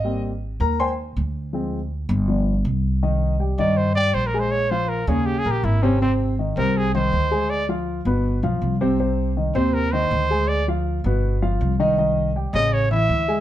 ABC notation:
X:1
M:4/4
L:1/8
Q:1/4=161
K:Cm
V:1 name="Trumpet"
z8 | z8 | z3 d c d (3c B c | _d c B A (3G A G =E _D |
C z2 B A c3 | d z6 z | z3 c B c3 | d z6 z |
z3 e ^c =e3 |]
V:2 name="Grand piano"
[G,B,Ce] z2 [Bb] [cgac'] z3 | [F,A,C] z3 [F,=B,D] z3 | [E,Ee]2 [G,Gg] [E,Ee]2 [G,Gg]2 [A,Aa]- | [A,Aa] [F,Ff]2 [_D,_D_d]2 [B,Bb]2 [C,Cc] |
[C,Cc]2 [E,Ee] [C,Cc]2 [E,Ee]2 [A,Aa]- | [A,Aa] [F,Ff]2 [=B,,=B,=B]2 [F,Ff]2 [C,Cc] | [C,Cc]2 [E,Ee] [C,Cc]2 [E,Ee]2 [A,Aa]- | [A,Aa] [F,Ff]2 [=B,,=B,=B]2 [F,Ff]2 [E,Ee] |
[E,Ee]2 [G,Gg] [_D,_D_d]2 [=E,=E=e]2 [A,Aa] |]
V:3 name="Upright bass" clef=bass
A,,,3 E,,3 D,,2- | D,,3 G,,,3 C,,2- | C,,3 G,,3 B,,,2- | B,,,3 E,,2 B,,, A,,,2- |
A,,,3 C,,3 D,,2- | D,,3 G,,,2 =B,,, C,,2- | C,,3 E,,3 D,,2- | D,,3 G,,,3 C,,2- |
C,,3 =A,,,3 D,,2 |]